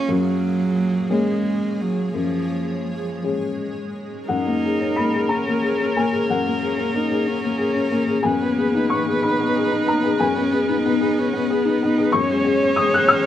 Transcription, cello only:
0.00 0.11 C#4 medium
0.09 1.13 F#3 medium
1.11 1.83 G#3 medium
1.81 2.16 F#3 medium
2.17 3.21 F3 medium
4.28 5.31 D#4 medium
5.30 6.29 C#4 soft
6.31 6.66 A#3 soft
6.64 6.97 C#4 soft
6.95 7.29 D#4 medium
7.27 8.25 C#4 medium
8.26 9.24 B3 medium
9.23 10.20 D#4 medium
10.21 10.55 C#4 medium
10.53 10.85 B3 medium
10.87 11.20 D#4 medium
11.19 11.53 C#4 medium
11.52 11.85 B3 medium
11.84 12.15 D#4 medium
12.17 13.26 C#4 medium

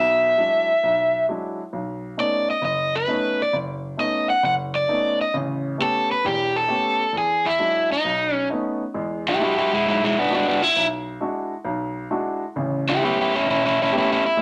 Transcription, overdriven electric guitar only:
0.00 1.25 E5 medium
2.20 2.50 D5 medium
2.51 2.64 D#5 medium
2.65 2.95 D#5 medium
2.95 3.41 B4 medium
3.42 3.55 D5 medium
4.00 4.29 D#5 medium
4.30 4.44 F#5 medium
4.45 4.53 F#5 medium
4.75 5.21 D5 medium
5.21 5.35 D#5 medium
5.82 6.11 A4 medium
6.11 6.25 B4 medium
6.26 6.56 G4 medium
6.56 7.18 A4 medium
7.18 7.47 G#4 medium
7.46 7.92 E4 medium
7.92 8.34 D#4 medium
8.34 8.48 C#4 medium
9.28 9.42 E4 medium
9.28 9.42 G4 medium
9.44 9.56 E4 medium
9.44 9.57 G4 medium
9.57 9.71 E4 medium
9.57 9.72 G4 medium
9.73 9.86 G#3 medium
9.73 9.87 E4 medium
9.88 10.01 G#3 medium
9.88 10.02 E4 medium
10.04 10.17 G#3 medium
10.04 10.19 E4 medium
10.19 10.32 B3 medium
10.19 10.32 D4 medium
10.35 10.47 B3 medium
10.35 10.48 D4 medium
10.48 10.61 B3 medium
10.48 10.62 D4 medium
10.62 10.86 E4 loud
12.89 13.03 E4 medium
12.89 13.03 G4 medium
13.04 13.17 E4 medium
13.04 13.18 G4 medium
13.21 13.33 E4 medium
13.21 13.34 G4 medium
13.35 13.48 C#4 medium
13.35 13.48 E4 medium
13.50 13.63 C#4 medium
13.50 13.64 E4 medium
13.65 13.78 C#4 medium
13.65 13.79 E4 medium
13.82 13.94 C#4 medium
13.82 13.95 E4 medium
13.98 14.09 C#4 medium
13.98 14.10 E4 medium
14.12 14.24 C#4 medium
14.12 14.25 E4 medium
14.26 14.42 E4 loud

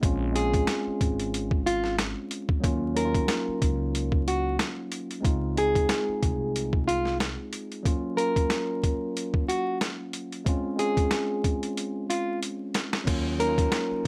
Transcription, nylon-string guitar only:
0.35 1.62 G#4 medium
1.66 1.96 F4 medium
2.97 4.23 A#4 medium
4.28 4.57 F#4 medium
5.58 6.84 G#4 medium
6.88 7.17 F4 medium
8.17 9.44 A#4 medium
9.48 9.78 F#4 medium
10.79 12.05 G#4 medium
12.10 12.39 F4 medium
13.40 14.07 A#4 medium

